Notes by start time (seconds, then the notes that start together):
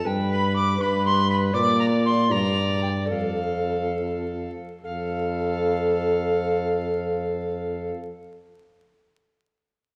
0.05 G2 B4 G5
0.31 B5
0.55 D6
0.80 G2 B4 B5
1.05 C6
1.30 B5
1.53 A#2 D5 D6
1.79 A#5
2.05 C6
2.31 G2 D5 A#5
2.82 G5
3.10 F2 A4 F5
4.83 F2 A4 F5